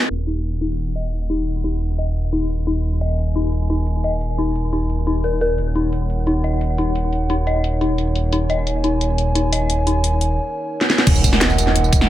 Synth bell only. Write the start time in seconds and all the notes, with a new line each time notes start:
0.27 D#4
0.61 D#4
0.95 D#5
1.30 D#4
1.64 D#4
1.98 D#5
2.33 D#4
2.67 D#4
3.01 D#5
3.35 D#4
3.70 D#4
4.04 D#5
4.38 D#4
4.73 D#4
5.07 D#4
5.24 A#4
5.41 A#4
5.75 D#4
6.27 D#4
6.44 D#5
6.78 D#4
7.30 D#4
7.47 D#5
7.81 D#4
8.33 D#4
8.50 D#5
8.84 D#4
9.35 D#4
9.53 D#5
9.87 D#4